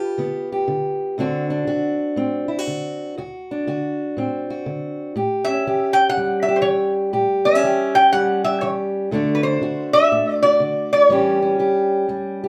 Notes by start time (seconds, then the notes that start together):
Already playing: D3 F4 G4 B4
0.18 D3 B3
0.52 G4
0.68 D3
1.18 D2 D3 C4 D4 F#4
1.50 D4
1.67 D3 F#4
2.16 A2 C4
2.48 E4
2.59 F#4
2.67 D3
3.17 D2 F#4
3.51 D4
3.67 D3 F#4
4.17 A2 C4
4.50 F#4
4.66 D3
5.16 A2 G4
5.44 C#4 E5
5.67 E3 G4
5.93 G5
6.09 F#5
6.17 E2 G3
6.43 E5
6.48 G4
6.56 C5
6.62 E3 C#5
7.13 A2 G4
7.45 B3 E5
7.55 C#4
7.64 E3 G4
7.95 G5
8.12 E2 G3 F#5
8.44 G4 E5
8.61 E3 C#5
9.11 D2 D3 A3 D4 F#4
9.35 B4
9.43 D4 C5
9.61 D3 F#4
9.93 E5
10.12 A2 A3
10.43 F#4 D5
10.60 D3
10.93 C#5
11.09 A2 E3 G3 C#4 G4
11.42 C#4
11.59 E3 G4
12.08 E2 G3
12.44 G4